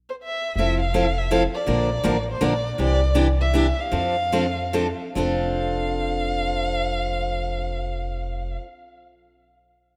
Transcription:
0.09 C5
0.23 E5
0.56 F1 F3 C4 E4 A4 E5
0.80 F5
0.94 F3 C4 E4 A4
1.18 E5
1.31 F3 C4 E4 A4 F5
1.54 D5
1.67 A#1 D3 F3 A#3 D4 A#4
2.04 A1 D3 F3 A#3 D4 A#4
2.31 C5
2.41 A#1 D3 F3 A#3 D4 A#4 D5
2.78 C2 C3 E3 D4 G4 D5
3.15 C3 E3 D4 G4
3.41 E5
3.54 C3 E3 D4 G4
3.80 F5
3.92 F2 F3 C4 D4 A4
4.32 F3 C4 D4 A4
4.73 F3 C4 D4 A4
5.15 F1 F3 C4 D4 A4 F5

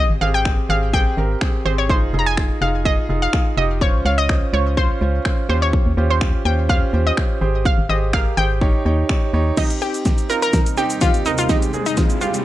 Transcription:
Already playing: C4 G4 G#4
0.10 G#1
0.21 G#1 C4 G4 G#4 F5
0.34 G5
0.45 C4 G4 G#4, finger snap, kick
0.69 G#1 C4 G4 G#4 F5
0.93 C4 G4 G#4 G5, kick
1.17 G#1 C4 G4 A#4
1.41 C4 G4 G#4, finger snap, kick
1.65 G#1 C4 G4 G#4 C5
1.78 C#5
1.89 D#4 F4 G#4 C5, kick
2.02 F1
2.13 F1 D#4 F4 G#4
2.19 A#5
2.26 G#5
2.37 D#4 F4 G#4, finger snap, kick
2.61 F1 D#4 F4 G#4 F5
2.85 D#4 F4 G#4 D#5, kick
3.09 F1 D#4 F4 G#4
3.22 F5
3.33 D#4 F4 G#4, finger snap, kick
3.57 F1 D#4 F4 G4 D#5
3.81 C#4 F4 C5 C#5, kick
3.94 C#2
4.05 C#2 C#4 F4 C#5 F5
4.18 D#5
4.29 C#4 F4 C5, finger snap, kick
4.53 C#2 C#4 F4 C5 C#5
4.77 C#4 F4 C5, kick
5.01 C#2 C#4 F4 C5
5.25 C#4 F4 C5, finger snap, kick
5.49 D#2 C#4 F4 G4 C5
5.62 C#5
5.73 kick
5.86 D#2
5.97 D#2 C#4 F4 G4 C5
6.10 C5
6.21 C#4 F4 G4 C5, finger snap, kick
6.45 D#2 C#4 F4 G4 C5 G5
6.69 C#4 F4 G4 C5 F5, kick
6.93 D#2 C#4 F4 G4 C5
7.07 D#5
7.17 C#4 F4 G4 C5, finger snap, kick
7.41 G#1 G4 G#4 C5
7.65 F5, kick
7.78 G#1
7.89 G#1 G4 G#4 C5 D#5
8.13 G4 G#4 A#4 F5, finger snap, kick
8.37 G#1 G4 G#4 C5 G5
8.61 D#4 G4 C#5, kick
8.85 D#2 D#4 G4 C#5
9.09 D#4 G4 C#5, finger snap, kick
9.33 D#2 D#4 G4 C#5
9.57 D#2 C3 G3 C4 D#4 G4, kick, snare, closed hi-hat, crash, riser, shaker
9.70 closed hi-hat, shaker
9.81 C4 D#4 G4, shaker
9.94 closed hi-hat, shaker
10.05 C4 D#4 G4, kick, snare, closed hi-hat, shaker
10.18 closed hi-hat, shaker
10.29 C4 D#4 F4 A#4, shaker
10.42 A#4, closed hi-hat, shaker
10.53 C4 D#4 A#4, kick, snare, closed hi-hat, shaker
10.66 closed hi-hat, shaker
10.77 C4 D#4 G4, shaker
10.90 closed hi-hat, shaker
11.01 C4 D#4 F4 G4, kick, snare, closed hi-hat, shaker
11.14 closed hi-hat, shaker
11.25 C4 D#4 A#4, shaker
11.38 F4, closed hi-hat, shaker
11.49 G#2 G#3 C4 D#4 G4, kick, snare, closed hi-hat, shaker
11.62 closed hi-hat, shaker
11.73 G#3 C4 G#4, shaker
11.86 D#4, closed hi-hat, shaker
11.97 G#3 C4 F4, kick, snare, closed hi-hat, shaker
12.10 closed hi-hat, shaker
12.21 G#3 C4 F4 G4, shaker
12.34 closed hi-hat, shaker

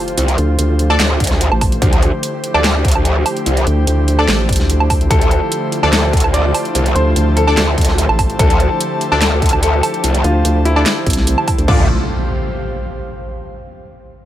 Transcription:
Already playing: D3 F3 A3 E4 F4 G4 C5, sub drop
0.08 closed hi-hat
0.17 C2, closed hi-hat
0.28 closed hi-hat
0.38 D2, closed hi-hat
0.59 D2, closed hi-hat
0.79 closed hi-hat
0.90 D4 A4 D5, low woodblock
1.00 D2, snare, clap, closed hi-hat
1.20 D2, kick, closed hi-hat
1.24 closed hi-hat
1.27 snare, closed hi-hat
1.41 closed hi-hat
1.52 A1, low woodblock
1.61 kick, open hi-hat, low woodblock
1.72 closed hi-hat
1.82 D2 G4, kick, closed hi-hat
1.93 closed hi-hat
2.02 closed hi-hat
2.23 closed hi-hat
2.44 closed hi-hat
2.54 D2 D4 A4 D5, low woodblock
2.64 snare, clap, closed hi-hat
2.85 kick, closed hi-hat
2.88 closed hi-hat
2.91 D2, closed hi-hat, low woodblock
3.05 closed hi-hat
3.26 open hi-hat, low woodblock
3.37 closed hi-hat
3.46 C2, closed hi-hat
3.57 closed hi-hat
3.67 D2, closed hi-hat
3.87 D2, closed hi-hat
4.08 closed hi-hat
4.19 D4 A4 D5, low woodblock
4.28 A1, snare, clap, closed hi-hat
4.49 kick, closed hi-hat
4.53 closed hi-hat
4.56 D2, closed hi-hat
4.60 snare
4.70 closed hi-hat
4.80 low woodblock
4.90 kick, open hi-hat, low woodblock
5.01 closed hi-hat
5.11 D2 F4 A4, kick, closed hi-hat
5.21 closed hi-hat
5.31 closed hi-hat
5.52 closed hi-hat
5.72 closed hi-hat
5.77 A5
5.83 D2 D4 A4 D5, low woodblock
5.93 A4, snare, clap, closed hi-hat
6.13 kick, closed hi-hat
6.17 closed hi-hat
6.20 D2, closed hi-hat, low woodblock
6.34 D5, closed hi-hat
6.54 open hi-hat, low woodblock
6.65 closed hi-hat
6.75 C2, closed hi-hat
6.86 closed hi-hat
6.95 D2 C5, closed hi-hat
7.16 D2, closed hi-hat
7.37 A4, closed hi-hat
7.47 D4 A4 D5, low woodblock
7.57 D2, snare, clap, closed hi-hat
7.78 D2, kick, closed hi-hat
7.81 closed hi-hat
7.85 closed hi-hat
7.89 snare
7.98 closed hi-hat
8.09 A1, low woodblock
8.19 kick, open hi-hat, low woodblock
8.30 closed hi-hat
8.39 D2 G4 A4, kick, closed hi-hat
8.50 closed hi-hat
8.60 closed hi-hat
8.81 closed hi-hat
9.01 closed hi-hat
9.12 D2 D4 A4 D5, low woodblock
9.21 A4, snare, clap, closed hi-hat
9.42 kick, closed hi-hat
9.46 closed hi-hat
9.49 D2, closed hi-hat, low woodblock
9.63 A4, closed hi-hat
9.83 open hi-hat, low woodblock
9.94 closed hi-hat
10.04 C2, closed hi-hat
10.15 closed hi-hat
10.24 D2 F4, closed hi-hat
10.45 D2, closed hi-hat
10.65 E4, closed hi-hat
10.76 D4 A4 D5, low woodblock
10.86 snare, clap, closed hi-hat
11.06 C2, kick, closed hi-hat
11.10 closed hi-hat
11.13 snare, closed hi-hat
11.27 closed hi-hat
11.38 low woodblock
11.48 kick, open hi-hat, low woodblock
11.58 D2, closed hi-hat
11.68 D2 D3 F3 A3 D4 E4 F4 G4 A4 D5, kick, crash, impact
11.75 C5
11.81 F5

